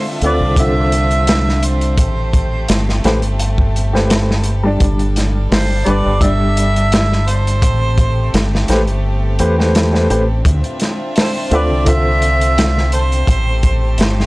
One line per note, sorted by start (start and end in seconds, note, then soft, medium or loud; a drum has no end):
0.00 0.14 D3 medium
0.00 0.15 C4 medium
0.00 4.76 C4 medium
0.00 1.95 D4 medium
0.00 0.15 F4 medium
0.00 1.95 F4 medium
0.00 0.16 E5 loud
0.00 1.95 E5 medium
0.21 0.42 D2 loud
0.21 0.53 D3 medium
0.21 0.54 C4 medium
0.21 0.54 F4 medium
0.21 0.54 E5 medium
0.21 closed hi-hat medium
0.26 0.33 B4 medium
0.26 0.61 D5 loud
0.40 1.98 C2 medium
0.56 1.96 D3 medium
0.56 1.97 C4 medium
0.56 1.97 F4 medium
0.56 1.67 E5 loud
0.56 1.98 E5 medium
0.56 kick loud
0.56 closed hi-hat medium
0.92 closed hi-hat medium
1.11 closed hi-hat soft
1.27 snare loud
1.27 closed hi-hat medium
1.49 snare soft
1.63 3.05 C5 medium
1.63 closed hi-hat medium
1.81 closed hi-hat soft
1.97 2.65 A1 medium
1.97 4.77 A3 medium
1.97 4.77 G4 medium
1.97 10.41 A4 medium
1.97 kick loud
1.97 closed hi-hat medium
2.33 kick loud
2.33 closed hi-hat medium
2.68 3.00 G1 medium
2.68 snare loud
2.68 closed hi-hat loud
2.89 snare soft
3.04 3.24 A1 loud
3.04 3.15 A3 loud
3.04 3.15 G4 medium
3.04 3.15 B4 medium
3.04 3.15 C5 loud
3.04 snare medium
3.04 closed hi-hat medium
3.22 4.78 G1 medium
3.22 closed hi-hat soft
3.39 closed hi-hat medium
3.58 kick medium
3.76 closed hi-hat medium
3.93 4.59 A3 medium
3.93 4.59 G4 medium
3.93 4.60 B4 medium
3.93 4.60 C5 medium
3.93 snare soft
4.10 snare loud
4.10 closed hi-hat loud
4.31 snare soft
4.44 closed hi-hat medium
4.63 5.82 G3 medium
4.63 5.83 D4 medium
4.63 5.84 D5 medium
4.80 5.48 G1 medium
4.80 7.60 G3 medium
4.80 7.59 D4 medium
4.80 kick loud
4.80 closed hi-hat medium
4.99 closed hi-hat soft
5.16 snare soft
5.16 closed hi-hat medium
5.51 5.82 G1 medium
5.51 5.89 C5 medium
5.51 snare loud
5.51 open hi-hat medium
5.85 6.03 G1 medium
5.85 6.17 G3 medium
5.85 6.18 D4 medium
5.85 6.18 B4 loud
5.85 6.25 D5 loud
5.85 closed hi-hat medium
6.06 7.63 G1 loud
6.21 7.60 G3 medium
6.21 7.61 D4 medium
6.21 7.61 D5 medium
6.21 7.30 E5 loud
6.21 kick loud
6.21 closed hi-hat medium
6.57 closed hi-hat medium
6.76 closed hi-hat soft
6.92 snare loud
6.92 closed hi-hat medium
7.12 snare soft
7.28 8.69 C5 medium
7.28 closed hi-hat medium
7.47 closed hi-hat soft
7.62 8.30 A1 medium
7.62 10.42 A3 medium
7.62 14.26 C4 medium
7.62 10.42 G4 medium
7.62 kick loud
7.62 closed hi-hat medium
7.98 kick medium
7.98 closed hi-hat medium
8.34 8.65 G1 medium
8.34 snare loud
8.34 closed hi-hat medium
8.55 snare soft
8.68 8.87 A1 loud
8.68 8.79 A3 loud
8.68 8.79 G4 medium
8.68 8.80 B4 medium
8.68 8.79 C5 loud
8.68 snare medium
8.68 closed hi-hat medium
8.87 9.39 G1 medium
8.87 closed hi-hat soft
9.39 10.07 E2 medium
9.39 9.54 A3 medium
9.39 9.54 G4 medium
9.39 9.54 B4 medium
9.39 9.54 C5 loud
9.39 closed hi-hat medium
9.58 9.89 A3 medium
9.58 9.89 G4 medium
9.58 9.89 B4 medium
9.58 9.90 C5 loud
9.58 snare soft
9.75 snare loud
9.75 closed hi-hat medium
9.93 10.05 A3 medium
9.93 10.06 G4 medium
9.93 10.06 B4 medium
9.93 10.06 C5 medium
9.93 snare soft
10.10 10.41 A1 medium
10.10 10.20 A3 medium
10.10 10.20 G4 medium
10.10 10.20 B4 medium
10.10 10.21 C5 medium
10.10 closed hi-hat medium
10.45 10.62 D2 loud
10.45 13.25 D4 medium
10.45 13.25 F4 medium
10.45 13.25 E5 medium
10.45 kick loud
10.45 closed hi-hat medium
10.64 closed hi-hat soft
10.80 snare soft
10.80 closed hi-hat medium
11.16 11.28 A4 medium
11.16 11.50 C5 medium
11.16 snare loud
11.16 open hi-hat medium
11.51 11.71 D2 medium
11.51 11.82 D3 medium
11.51 11.83 C4 medium
11.51 11.83 F4 medium
11.51 11.61 B4 medium
11.51 11.90 D5 loud
11.51 11.83 E5 medium
11.51 closed hi-hat medium
11.71 13.25 C2 medium
11.85 13.25 D3 medium
11.85 13.25 C4 medium
11.85 13.25 F4 medium
11.85 13.26 E5 medium
11.85 12.93 E5 loud
11.85 kick loud
11.85 closed hi-hat loud
12.22 closed hi-hat medium
12.41 closed hi-hat soft
12.58 snare loud
12.58 closed hi-hat medium
12.78 snare soft
12.92 13.00 A4 medium
12.92 14.26 C5 loud
12.92 closed hi-hat medium
13.12 closed hi-hat soft
13.27 13.95 A1 medium
13.27 14.26 A3 medium
13.27 14.26 G4 medium
13.27 14.26 A4 medium
13.27 kick loud
13.27 closed hi-hat medium
13.63 kick medium
13.63 closed hi-hat medium
13.98 14.26 G1 medium
13.98 snare loud
13.98 closed hi-hat medium
14.20 snare soft